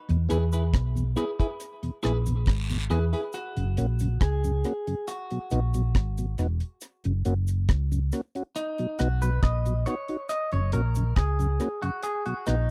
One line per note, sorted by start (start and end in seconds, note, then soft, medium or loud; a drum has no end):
0.09 0.17 E2 medium
0.09 0.29 E2 loud
0.09 0.17 B2 medium
0.09 closed hi-hat medium
0.29 0.72 E2 medium
0.29 0.38 B3 medium
0.29 0.38 E4 medium
0.29 0.43 E4 medium
0.29 0.38 G#4 loud
0.29 0.43 G#4 medium
0.29 0.43 B4 medium
0.29 closed hi-hat medium
0.29 cabasa soft
0.52 0.62 E4 medium
0.52 0.62 G#4 medium
0.52 0.62 B4 medium
0.52 closed hi-hat medium
0.52 cabasa medium
0.74 1.15 B1 medium
0.74 kick loud
0.74 cross-stick loud
0.74 closed hi-hat loud
0.95 1.04 E2 medium
0.95 1.04 B2 medium
0.95 closed hi-hat soft
0.95 cabasa medium
1.16 1.25 B3 medium
1.16 1.25 E4 medium
1.16 1.30 E4 medium
1.16 1.25 G#4 medium
1.16 1.30 G#4 medium
1.16 1.30 B4 medium
1.16 closed hi-hat medium
1.16 cabasa medium
1.39 1.47 E4 medium
1.39 1.49 E4 medium
1.39 1.48 G#4 medium
1.39 1.49 G#4 medium
1.39 1.49 B4 medium
1.39 kick medium
1.39 closed hi-hat medium
1.60 closed hi-hat loud
1.60 cabasa medium
1.83 1.91 E2 medium
1.83 1.91 B2 medium
1.83 closed hi-hat medium
2.03 2.46 A#1 medium
2.03 2.12 B3 medium
2.03 2.16 E4 medium
2.03 2.13 E4 medium
2.03 2.16 G#4 loud
2.03 2.13 G#4 medium
2.03 2.17 B4 loud
2.03 cross-stick medium
2.03 closed hi-hat medium
2.03 cabasa soft
2.26 2.34 E2 medium
2.26 2.34 B2 medium
2.26 closed hi-hat medium
2.26 cabasa medium
2.46 2.89 G#1 medium
2.46 kick loud
2.46 cross-stick loud
2.46 closed hi-hat medium
2.46 long guiro medium
2.70 2.78 E2 medium
2.70 2.78 B2 medium
2.70 closed hi-hat medium
2.70 cabasa medium
2.90 3.13 E2 loud
2.90 2.99 B3 medium
2.90 3.03 E4 medium
2.90 2.99 E4 medium
2.90 3.03 G#4 loud
2.90 2.99 G#4 medium
2.90 3.04 B4 medium
2.90 closed hi-hat medium
2.90 cabasa soft
3.13 3.21 E4 medium
3.13 3.23 E4 medium
3.13 3.23 G#4 medium
3.13 3.21 G#4 medium
3.13 3.22 B4 medium
3.13 closed hi-hat medium
3.33 4.24 F#4 medium
3.33 closed hi-hat medium
3.33 cabasa medium
3.57 3.77 F#1 medium
3.57 3.65 F#2 medium
3.57 3.65 C#3 medium
3.57 closed hi-hat medium
3.77 4.19 A#1 medium
3.77 3.86 A#3 medium
3.77 3.86 C#4 medium
3.77 3.86 F#4 medium
3.77 closed hi-hat medium
3.77 cabasa soft
3.99 4.08 F#2 medium
3.99 4.08 C#3 medium
3.99 closed hi-hat medium
3.99 cabasa medium
4.21 4.63 C#2 medium
4.21 5.07 G#4 loud
4.21 kick loud
4.21 cross-stick loud
4.21 closed hi-hat medium
4.44 4.52 F#2 medium
4.44 4.52 C#3 medium
4.44 closed hi-hat soft
4.44 cabasa medium
4.64 4.73 A#3 medium
4.64 4.73 C#4 medium
4.64 4.73 F#4 medium
4.64 closed hi-hat medium
4.64 cabasa medium
4.87 4.95 F#2 medium
4.87 4.95 C#3 medium
4.87 closed hi-hat medium
5.08 6.34 F#4 medium
5.08 closed hi-hat loud
5.08 cabasa medium
5.30 5.39 B2 medium
5.30 5.39 F#3 medium
5.30 closed hi-hat soft
5.51 5.93 A#1 medium
5.51 5.60 B3 medium
5.51 5.60 D#4 medium
5.51 5.60 F#4 medium
5.51 closed hi-hat medium
5.51 cabasa medium
5.74 5.82 B2 medium
5.74 5.82 F#3 medium
5.74 closed hi-hat medium
5.74 cabasa medium
5.95 6.37 G#1 medium
5.95 kick loud
5.95 cross-stick loud
5.95 closed hi-hat medium
6.18 6.26 B2 medium
6.18 6.26 F#3 medium
6.18 closed hi-hat medium
6.18 cabasa medium
6.38 6.60 E1 loud
6.38 6.47 B3 medium
6.38 6.47 D#4 medium
6.38 6.47 F#4 medium
6.38 closed hi-hat medium
6.38 cabasa medium
6.60 closed hi-hat medium
6.81 closed hi-hat medium
6.81 cabasa medium
7.04 7.25 F#1 medium
7.04 7.13 F#2 medium
7.04 7.13 C#3 medium
7.04 closed hi-hat medium
7.25 7.67 F#1 medium
7.25 7.34 A#3 medium
7.25 7.34 C#4 medium
7.25 7.34 F#4 medium
7.25 closed hi-hat medium
7.25 cabasa soft
7.47 closed hi-hat medium
7.47 cabasa medium
7.69 8.10 C#2 loud
7.69 kick loud
7.69 cross-stick loud
7.69 closed hi-hat loud
7.92 8.00 F#2 medium
7.92 7.99 C#3 medium
7.92 closed hi-hat soft
7.92 cabasa medium
8.12 8.21 A#3 medium
8.12 8.21 C#4 medium
8.12 8.21 F#4 medium
8.12 closed hi-hat medium
8.12 cabasa medium
8.35 8.43 C#4 medium
8.35 8.43 F#4 medium
8.35 closed hi-hat medium
8.56 9.01 D#4 medium
8.56 closed hi-hat loud
8.56 cabasa medium
8.78 8.87 B2 medium
8.78 8.87 F#3 medium
8.78 closed hi-hat medium
8.99 9.41 B1 loud
8.99 9.08 B3 medium
8.99 9.08 D#4 medium
8.99 9.23 F#4 loud
8.99 9.08 F#4 medium
8.99 cross-stick medium
8.99 closed hi-hat medium
8.99 cabasa soft
9.22 9.30 B2 medium
9.22 9.30 F#3 medium
9.22 9.42 B4 loud
9.22 closed hi-hat soft
9.22 cabasa medium
9.43 9.84 A#1 loud
9.43 9.86 D#5 loud
9.43 kick loud
9.43 cross-stick loud
9.43 closed hi-hat loud
9.65 9.74 B2 medium
9.65 9.74 F#3 medium
9.65 closed hi-hat medium
9.65 cabasa medium
9.86 9.95 B3 medium
9.86 9.95 D#4 medium
9.86 9.95 F#4 medium
9.86 10.29 C#5 loud
9.86 closed hi-hat medium
9.86 cabasa medium
10.08 10.17 D#4 medium
10.08 10.17 F#4 medium
10.08 closed hi-hat medium
10.29 10.52 D#5 loud
10.29 closed hi-hat medium
10.29 cabasa medium
10.52 10.73 F#1 medium
10.52 10.60 F#2 medium
10.52 10.60 C#3 medium
10.52 10.72 C#5 medium
10.52 closed hi-hat soft
10.72 11.15 A#1 medium
10.72 10.82 A#3 medium
10.72 10.82 C#4 medium
10.72 10.82 F#4 medium
10.72 11.16 A#4 medium
10.72 closed hi-hat medium
10.72 cabasa soft
10.95 11.04 F#2 medium
10.95 11.04 C#3 medium
10.95 closed hi-hat medium
10.95 cabasa medium
11.16 11.58 C#2 medium
11.16 11.82 G#4 medium
11.16 kick loud
11.16 cross-stick loud
11.16 closed hi-hat loud
11.39 11.47 F#2 medium
11.39 11.47 C#3 medium
11.39 closed hi-hat soft
11.39 cabasa medium
11.60 11.68 A#3 medium
11.60 11.69 C#4 medium
11.60 11.69 F#4 medium
11.60 closed hi-hat medium
11.60 cabasa medium
11.82 11.91 F#2 medium
11.82 11.91 C#3 medium
11.82 12.03 F#4 medium
11.82 closed hi-hat medium
12.03 12.25 G#4 loud
12.03 closed hi-hat loud
12.03 cabasa medium
12.26 12.34 B2 medium
12.26 12.34 F#3 medium
12.26 12.47 F#4 medium
12.26 closed hi-hat soft
12.46 12.71 A#1 loud
12.46 12.55 B3 medium
12.46 12.71 D#4 medium
12.46 12.56 D#4 medium
12.46 12.56 F#4 medium
12.46 cross-stick medium
12.46 closed hi-hat medium
12.46 cabasa medium